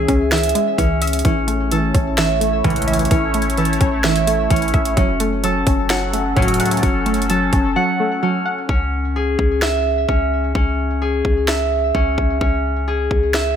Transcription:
Already playing: E3 G#3 C#4 G#4 E5
0.08 C#2 C#4, kick, closed hi-hat
0.32 E3 E5, snare, closed hi-hat
0.38 closed hi-hat
0.43 closed hi-hat
0.49 closed hi-hat
0.55 G#3, closed hi-hat
0.78 C#2 E3 C#4, kick, closed hi-hat
1.02 E5, closed hi-hat
1.07 closed hi-hat
1.13 closed hi-hat
1.19 closed hi-hat
1.25 A1 E3 A3 C#4 E4 C#5, kick, closed hi-hat
1.47 A3, closed hi-hat
1.72 E3 A4, closed hi-hat
1.94 A1 C#4, kick, closed hi-hat
2.18 E3 E5, snare, closed hi-hat
2.41 A3, closed hi-hat
2.64 A1 C#2 A2 E3 C#4, kick, closed hi-hat
2.70 closed hi-hat
2.76 closed hi-hat
2.82 closed hi-hat
2.87 E5, closed hi-hat
2.93 closed hi-hat
2.99 closed hi-hat
3.05 closed hi-hat
3.11 A1 E3 C#4, kick, closed hi-hat
3.34 A3, closed hi-hat, open hi-hat
3.42 closed hi-hat
3.50 closed hi-hat
3.57 E3 A4, closed hi-hat
3.65 closed hi-hat
3.73 closed hi-hat
3.81 A1 C#4, kick, closed hi-hat
4.04 E3 E5, snare, closed hi-hat
4.16 closed hi-hat
4.27 A3, closed hi-hat
4.50 A1 E3 C#4, kick, closed hi-hat
4.56 closed hi-hat
4.62 closed hi-hat
4.68 closed hi-hat
4.74 A1 E5, kick, closed hi-hat
4.85 closed hi-hat
4.97 F#1 F#3 C#4 A4, kick, closed hi-hat
5.20 A3, closed hi-hat
5.43 F#3 A4, closed hi-hat
5.66 F#1 C#4, kick, closed hi-hat
5.90 F#3 F#5, snare, closed hi-hat
6.13 A3, closed hi-hat
6.36 F#1 C#2 A2 F#3 C#4, kick, closed hi-hat
6.42 closed hi-hat
6.48 closed hi-hat
6.54 closed hi-hat
6.60 F#5, closed hi-hat
6.66 closed hi-hat
6.71 closed hi-hat
6.77 closed hi-hat
6.82 F#1 F#3 C#4, kick, closed hi-hat
7.06 A3, closed hi-hat, open hi-hat
7.14 closed hi-hat
7.22 closed hi-hat
7.29 F#3 A4, closed hi-hat
7.53 F#1 C#4, kick, closed hi-hat
7.76 F#3 F#5
8.00 A3
8.23 F#3 C#4
8.46 F#5
8.69 C#2 C#4, kick
9.16 G#4
9.39 C#2, kick
9.62 E5, snare
10.08 C#2 C#4, kick
10.55 C#2 C#4, kick
11.02 G#4
11.25 C#2, kick
11.48 E5, snare
11.95 C#2 C#4, kick
12.18 C#2, kick
12.41 C#2 C#4, kick
12.88 G#4
13.11 C#2, kick
13.34 E5, snare

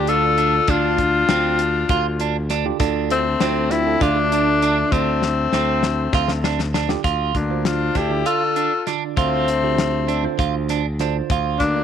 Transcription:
Already playing: D2 D3 D4 F4 G4 D5
0.07 D4 F4 A4, closed hi-hat
0.38 D4, closed hi-hat
0.68 D2 D4 F4, kick, closed hi-hat
0.98 kick, closed hi-hat
1.29 D2 C4, snare, closed hi-hat
1.59 closed hi-hat
1.89 D2 F4, kick, closed hi-hat
2.20 D4, closed hi-hat
2.50 D4, snare, closed hi-hat
2.65 D3 D4 F4 G4
2.79 D2 D3 D4 F4 A4, kick, closed hi-hat
3.10 A3 C4, closed hi-hat
3.40 D2 D3 C4 D4 F4 C5, snare, closed hi-hat
3.70 D3 C4 D4 E4 F4 A4, snare, closed hi-hat
3.85 D3 D4 F4 A4
4.01 D2 A3 D4 F4, kick, closed hi-hat
4.15 D3 D4 F4 A4
4.32 D4, closed hi-hat
4.62 D4, closed hi-hat
4.92 D2 A3 C4 D4, kick, closed hi-hat
5.22 snare
5.53 D2 C4, snare
5.83 snare
6.13 D2 F4, kick, snare
6.28 snare
6.44 D4, snare
6.59 snare
6.74 D4, snare
6.88 D3 D4 F4 G4, snare
7.04 D2 F4, kick, closed hi-hat
7.35 D2 A#3 D4, kick, closed hi-hat
7.49 D3 D4 F4 C5
7.65 D4 F4, snare, closed hi-hat
7.95 D2 D4 E4 G4, kick, snare, closed hi-hat
8.10 D3 D4 F4 D5
8.26 F4 A4, closed hi-hat
8.56 D4, closed hi-hat
8.87 D3 D4 F4 D5, snare, closed hi-hat
9.17 D2 A3 C4 F4, kick, closed hi-hat
9.48 closed hi-hat
9.62 D3 D4 F4 G4
9.79 snare, closed hi-hat
10.09 D4, closed hi-hat
10.23 D3 D4 F4 C5
10.39 D2 F4, kick, closed hi-hat
10.69 D4, snare, closed hi-hat
10.99 D3 D4 F4 C5, snare, closed hi-hat
11.30 D2 F4, kick, closed hi-hat
11.59 D2 A#3 D4, kick, snare, closed hi-hat
11.75 D3 D4 F4 D5

